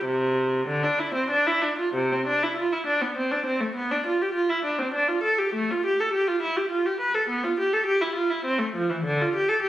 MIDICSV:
0, 0, Header, 1, 2, 480
1, 0, Start_track
1, 0, Key_signature, 0, "major"
1, 0, Tempo, 630252
1, 36, Time_signature, 3, 2, 24, 8
1, 1956, Tempo, 594648
1, 4836, Tempo, 582524
1, 7762, End_track
2, 0, Start_track
2, 0, Title_t, "Viola"
2, 0, Program_c, 0, 41
2, 38, Note_on_c, 0, 48, 65
2, 510, Note_off_c, 0, 48, 0
2, 516, Note_on_c, 0, 50, 61
2, 633, Note_off_c, 0, 50, 0
2, 637, Note_on_c, 0, 62, 61
2, 755, Note_off_c, 0, 62, 0
2, 756, Note_on_c, 0, 64, 57
2, 872, Note_off_c, 0, 64, 0
2, 872, Note_on_c, 0, 60, 47
2, 987, Note_off_c, 0, 60, 0
2, 993, Note_on_c, 0, 62, 60
2, 1108, Note_off_c, 0, 62, 0
2, 1118, Note_on_c, 0, 64, 63
2, 1234, Note_on_c, 0, 62, 56
2, 1237, Note_off_c, 0, 64, 0
2, 1358, Note_off_c, 0, 62, 0
2, 1359, Note_on_c, 0, 65, 59
2, 1480, Note_off_c, 0, 65, 0
2, 1481, Note_on_c, 0, 48, 60
2, 1601, Note_off_c, 0, 48, 0
2, 1618, Note_on_c, 0, 60, 48
2, 1730, Note_off_c, 0, 60, 0
2, 1732, Note_on_c, 0, 62, 54
2, 1842, Note_off_c, 0, 62, 0
2, 1850, Note_on_c, 0, 64, 52
2, 1961, Note_off_c, 0, 64, 0
2, 1963, Note_on_c, 0, 65, 60
2, 2078, Note_off_c, 0, 65, 0
2, 2081, Note_on_c, 0, 64, 53
2, 2195, Note_on_c, 0, 62, 50
2, 2199, Note_off_c, 0, 64, 0
2, 2314, Note_off_c, 0, 62, 0
2, 2318, Note_on_c, 0, 59, 45
2, 2437, Note_off_c, 0, 59, 0
2, 2440, Note_on_c, 0, 60, 45
2, 2556, Note_off_c, 0, 60, 0
2, 2556, Note_on_c, 0, 62, 51
2, 2677, Note_on_c, 0, 60, 47
2, 2678, Note_off_c, 0, 62, 0
2, 2792, Note_on_c, 0, 57, 44
2, 2796, Note_off_c, 0, 60, 0
2, 2912, Note_on_c, 0, 59, 58
2, 2916, Note_off_c, 0, 57, 0
2, 3033, Note_off_c, 0, 59, 0
2, 3040, Note_on_c, 0, 62, 51
2, 3158, Note_off_c, 0, 62, 0
2, 3164, Note_on_c, 0, 65, 55
2, 3276, Note_off_c, 0, 65, 0
2, 3288, Note_on_c, 0, 67, 50
2, 3386, Note_on_c, 0, 65, 61
2, 3399, Note_off_c, 0, 67, 0
2, 3504, Note_off_c, 0, 65, 0
2, 3513, Note_on_c, 0, 64, 55
2, 3627, Note_off_c, 0, 64, 0
2, 3631, Note_on_c, 0, 62, 49
2, 3743, Note_off_c, 0, 62, 0
2, 3748, Note_on_c, 0, 60, 49
2, 3862, Note_off_c, 0, 60, 0
2, 3870, Note_on_c, 0, 62, 54
2, 3981, Note_off_c, 0, 62, 0
2, 3985, Note_on_c, 0, 65, 52
2, 4104, Note_off_c, 0, 65, 0
2, 4105, Note_on_c, 0, 69, 52
2, 4225, Note_off_c, 0, 69, 0
2, 4229, Note_on_c, 0, 67, 54
2, 4354, Note_off_c, 0, 67, 0
2, 4358, Note_on_c, 0, 57, 60
2, 4479, Note_off_c, 0, 57, 0
2, 4493, Note_on_c, 0, 65, 53
2, 4607, Note_off_c, 0, 65, 0
2, 4609, Note_on_c, 0, 67, 58
2, 4720, Note_off_c, 0, 67, 0
2, 4727, Note_on_c, 0, 69, 51
2, 4833, Note_on_c, 0, 67, 61
2, 4839, Note_off_c, 0, 69, 0
2, 4950, Note_off_c, 0, 67, 0
2, 4953, Note_on_c, 0, 65, 56
2, 5070, Note_on_c, 0, 64, 54
2, 5071, Note_off_c, 0, 65, 0
2, 5187, Note_off_c, 0, 64, 0
2, 5193, Note_on_c, 0, 67, 56
2, 5307, Note_on_c, 0, 65, 56
2, 5310, Note_off_c, 0, 67, 0
2, 5424, Note_off_c, 0, 65, 0
2, 5431, Note_on_c, 0, 67, 59
2, 5548, Note_off_c, 0, 67, 0
2, 5551, Note_on_c, 0, 71, 52
2, 5665, Note_off_c, 0, 71, 0
2, 5668, Note_on_c, 0, 69, 59
2, 5786, Note_off_c, 0, 69, 0
2, 5786, Note_on_c, 0, 59, 62
2, 5903, Note_off_c, 0, 59, 0
2, 5911, Note_on_c, 0, 65, 55
2, 6027, Note_off_c, 0, 65, 0
2, 6037, Note_on_c, 0, 67, 59
2, 6148, Note_off_c, 0, 67, 0
2, 6152, Note_on_c, 0, 69, 57
2, 6258, Note_on_c, 0, 67, 76
2, 6268, Note_off_c, 0, 69, 0
2, 6378, Note_off_c, 0, 67, 0
2, 6384, Note_on_c, 0, 64, 65
2, 6497, Note_on_c, 0, 65, 59
2, 6503, Note_off_c, 0, 64, 0
2, 6617, Note_off_c, 0, 65, 0
2, 6623, Note_on_c, 0, 64, 54
2, 6742, Note_off_c, 0, 64, 0
2, 6743, Note_on_c, 0, 60, 64
2, 6858, Note_on_c, 0, 57, 57
2, 6861, Note_off_c, 0, 60, 0
2, 6983, Note_off_c, 0, 57, 0
2, 6992, Note_on_c, 0, 53, 57
2, 7111, Note_off_c, 0, 53, 0
2, 7112, Note_on_c, 0, 52, 53
2, 7237, Note_off_c, 0, 52, 0
2, 7238, Note_on_c, 0, 50, 70
2, 7359, Note_off_c, 0, 50, 0
2, 7372, Note_on_c, 0, 65, 59
2, 7487, Note_off_c, 0, 65, 0
2, 7490, Note_on_c, 0, 67, 62
2, 7598, Note_on_c, 0, 69, 65
2, 7601, Note_off_c, 0, 67, 0
2, 7709, Note_on_c, 0, 67, 74
2, 7716, Note_off_c, 0, 69, 0
2, 7762, Note_off_c, 0, 67, 0
2, 7762, End_track
0, 0, End_of_file